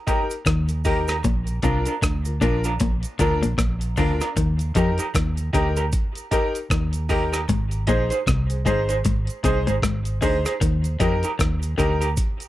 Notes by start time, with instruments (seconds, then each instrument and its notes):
0.07 upright piano D#4 G4 A#4, clean electric guitar D#4 G4 A#4, kick, closed hi-hat, cabasa
0.31 closed hi-hat, cabasa
0.46 fingered electric bass D#2, clean electric guitar D#3, kick, cross-stick, closed hi-hat, cabasa
0.69 closed hi-hat, cabasa
0.85 upright piano D#4 G4 A#4, clean electric guitar D#4 G4 A#4, kick, open hi-hat, cabasa
1.08 clean electric guitar D#4 G4 A#4, cross-stick, closed hi-hat, cabasa
1.24 fingered electric bass A#1, clean electric guitar A#2, kick, closed hi-hat, cabasa
1.47 closed hi-hat, cabasa
1.63 fingered electric bass C2, clean electric guitar C3 D4 F4 A#4, upright piano D4 F4 A#4, kick, closed hi-hat, cabasa
1.86 clean electric guitar D4 F4 A#4, closed hi-hat, cabasa
2.02 fingered electric bass D2, clean electric guitar D3, kick, cross-stick, closed hi-hat, cabasa
2.25 upright piano F4 A#4, closed hi-hat, cabasa
2.41 fingered electric bass A#1, clean electric guitar A#2 D4 F4 A#4, upright piano D4 F4 A#4, kick, closed hi-hat, cabasa
2.64 clean electric guitar D4 F4 A#4, closed hi-hat, cabasa
2.80 fingered electric bass A#1, clean electric guitar A#2, kick, closed hi-hat, cabasa
3.03 closed hi-hat, cabasa
3.19 fingered electric bass D2, clean electric guitar D3 D4 F4 A#4, upright piano D4 F4 A#4, kick, closed hi-hat, cabasa
3.42 fingered electric bass A#1, clean electric guitar A#2, closed hi-hat, cabasa
3.58 fingered electric bass A#1, clean electric guitar A#2, kick, cross-stick, closed hi-hat, cabasa
3.81 closed hi-hat, cabasa
3.97 fingered electric bass D2, clean electric guitar D3 D4 F4 A#4, upright piano D4 F4 A#4, kick, open hi-hat, cabasa
4.21 clean electric guitar D4 F4 A#4, cross-stick, closed hi-hat, cabasa
4.37 fingered electric bass D#2, clean electric guitar D#3, kick, closed hi-hat, cabasa
4.59 closed hi-hat, cabasa
4.75 fingered electric bass F2, clean electric guitar F3 D#4 G4 A#4, upright piano D#4 G4 A#4, kick, closed hi-hat, cabasa
4.98 clean electric guitar D#4 G4 A#4, closed hi-hat, cabasa
5.15 fingered electric bass D#2, clean electric guitar D#3, kick, cross-stick, closed hi-hat, cabasa
5.37 closed hi-hat, cabasa
5.53 fingered electric bass D2, clean electric guitar D3 D#4 G4 A#4, upright piano D#4 G4 A#4, kick, closed hi-hat, cabasa
5.77 clean electric guitar D#4 G4 A#4, closed hi-hat, cabasa
5.92 kick, closed hi-hat, cabasa
6.15 closed hi-hat, cabasa
6.31 clean electric guitar D#4 G4 A#4, upright piano D#4 G4 A#4, kick, closed hi-hat, cabasa
6.55 closed hi-hat, cabasa
6.70 fingered electric bass D#2, clean electric guitar D#3, kick, cross-stick, closed hi-hat, cabasa
6.93 closed hi-hat, cabasa
7.09 clean electric guitar D#4 G4 A#4, upright piano D#4 G4 A#4, kick, open hi-hat, cabasa
7.33 clean electric guitar D#4 G4 A#4, cross-stick, closed hi-hat, cabasa
7.49 fingered electric bass G#1, clean electric guitar G#2, kick, closed hi-hat, cabasa
7.71 closed hi-hat, cabasa
7.87 fingered electric bass A#1, clean electric guitar A#2 D#4 G#4 C5, upright piano D#4 G#4 C5, kick, closed hi-hat, cabasa
8.10 clean electric guitar D#4 G#4 C5, closed hi-hat, cabasa
8.27 fingered electric bass C2, clean electric guitar C3, kick, cross-stick, closed hi-hat, cabasa
8.50 upright piano G#4 C5, closed hi-hat, cabasa
8.65 fingered electric bass G#1, clean electric guitar G#2 D#4 G#4 C5, upright piano D#4 G#4 C5, kick, closed hi-hat, cabasa
8.89 clean electric guitar D#4 G#4 C5, closed hi-hat, cabasa
9.05 fingered electric bass G#1, clean electric guitar G#2, kick, closed hi-hat, cabasa
9.27 closed hi-hat, cabasa
9.43 fingered electric bass C2, clean electric guitar C3 D#4 G#4 C5, upright piano D#4 G#4 C5, kick, closed hi-hat, cabasa
9.67 fingered electric bass G#1, clean electric guitar G#2 D#4 G#4 C5, closed hi-hat, cabasa
9.82 fingered electric bass G#1, clean electric guitar G#2, kick, cross-stick, closed hi-hat, cabasa
10.05 closed hi-hat, cabasa
10.21 fingered electric bass D2, clean electric guitar D3 D#4 G#4 C5, upright piano D#4 G#4 C5, kick, open hi-hat, cabasa
10.45 clean electric guitar D#4 G#4 C5, cross-stick, closed hi-hat, cabasa
10.61 fingered electric bass D#2, clean electric guitar D#3, kick, closed hi-hat, cabasa
10.84 closed hi-hat, cabasa
10.99 fingered electric bass F2, clean electric guitar F3 D#4 G4 A#4, upright piano D#4 G4 A#4, kick, closed hi-hat, cabasa
11.23 clean electric guitar D#4 G4 A#4, closed hi-hat, cabasa
11.39 fingered electric bass D#2, clean electric guitar D#3, kick, cross-stick, closed hi-hat, cabasa
11.63 closed hi-hat, cabasa
11.77 fingered electric bass D2, clean electric guitar D3 D#4 G4 A#4, upright piano D#4 G4 A#4, kick, closed hi-hat, cabasa
12.01 clean electric guitar D#4 G4 A#4, closed hi-hat, cabasa
12.17 kick, closed hi-hat, cabasa
12.40 closed hi-hat, cabasa